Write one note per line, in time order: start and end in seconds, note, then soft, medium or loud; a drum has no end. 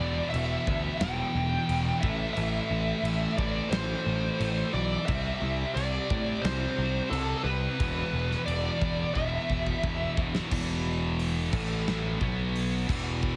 0.00 0.20 E1 medium
0.00 0.98 E2 loud
0.00 0.99 B2 loud
0.00 1.02 E3 loud
0.00 0.27 D5 medium
0.30 0.95 E5 medium
0.34 0.55 E1 medium
0.34 crash medium
0.67 0.89 D2 medium
0.67 kick medium
0.97 1.22 E1 medium
0.97 2.00 E2 medium
0.97 2.00 B2 loud
0.97 1.97 G5 loud
0.97 snare loud
0.97 crash medium
1.03 2.02 E3 loud
1.35 1.56 E1 medium
1.69 1.90 E1 medium
1.69 crash medium
2.01 2.25 A1 loud
2.01 3.35 A2 medium
2.01 3.38 E3 medium
2.01 3.35 A3 loud
2.01 2.32 E5 medium
2.01 kick loud
2.33 2.59 A1 loud
2.33 3.37 E5 medium
2.33 crash medium
2.70 2.92 A1 medium
3.03 3.25 A1 medium
3.03 crash medium
3.37 3.60 A1 loud
3.37 4.72 A2 medium
3.37 5.08 E3 medium
3.37 4.71 A3 medium
3.37 3.69 D5 medium
3.37 kick loud
3.70 3.93 A1 loud
3.70 4.75 C5 loud
3.70 snare loud
3.70 crash medium
4.06 4.28 A1 loud
4.39 4.62 A1 loud
4.39 4.71 A2 medium
4.39 5.09 E3 medium
4.39 4.73 A3 medium
4.39 crash medium
4.73 4.95 B1 medium
4.73 5.05 D5 medium
5.06 5.30 C2 loud
5.06 6.41 C3 loud
5.06 6.45 G3 loud
5.06 6.42 C4 loud
5.06 5.70 E5 loud
5.06 kick loud
5.06 crash medium
5.41 5.63 C2 medium
5.75 5.97 C2 loud
5.75 6.45 D5 medium
5.75 crash medium
6.10 6.32 A2 medium
6.10 kick loud
6.42 6.65 C2 loud
6.42 7.77 C3 medium
6.42 7.78 G3 medium
6.42 7.10 C5 loud
6.42 snare loud
6.42 crash medium
6.46 7.78 C4 loud
6.78 7.00 C2 medium
7.10 7.33 C2 medium
7.10 7.36 A4 medium
7.10 crash medium
7.37 7.43 A4 medium
7.44 7.66 C2 medium
7.44 7.78 G3 medium
7.44 7.77 C4 medium
7.44 8.42 B4 medium
7.48 7.78 C3 medium
7.78 8.01 E1 loud
7.78 9.12 E2 loud
7.78 9.13 B2 loud
7.78 9.13 E3 loud
7.78 kick loud
7.78 crash medium
8.13 8.34 E1 medium
8.31 snare soft
8.46 8.69 E1 medium
8.46 9.14 D5 medium
8.46 crash medium
8.81 9.03 E1 loud
8.81 kick medium
9.14 9.37 E1 medium
9.14 10.48 E2 medium
9.14 10.48 B2 medium
9.14 10.49 E3 loud
9.14 10.12 E5 loud
9.14 kick medium
9.50 9.71 E1 loud
9.50 kick medium
9.67 kick medium
9.83 10.05 E1 loud
9.83 kick loud
10.17 10.39 E1 loud
10.17 10.50 E2 medium
10.17 10.49 B2 medium
10.17 10.48 E3 medium
10.17 kick loud
10.35 snare loud
10.50 11.49 E1 loud
10.50 11.51 E2 loud
10.50 11.51 B2 loud
10.50 11.51 E3 loud
10.50 kick loud
10.50 crash loud
11.19 open hi-hat medium
11.52 12.16 A1 medium
11.52 12.19 A2 medium
11.52 12.19 E3 loud
11.52 12.19 A3 loud
11.52 kick loud
11.52 crash loud
11.88 snare loud
12.20 12.84 B1 medium
12.20 12.87 B2 medium
12.20 12.87 F#3 medium
12.20 12.87 B3 medium
12.20 kick loud
12.56 open hi-hat medium
12.87 13.36 E1 medium
12.87 13.36 E2 medium
12.87 13.36 B2 medium
12.87 13.36 E3 medium
12.87 kick loud
12.87 crash loud
13.23 kick loud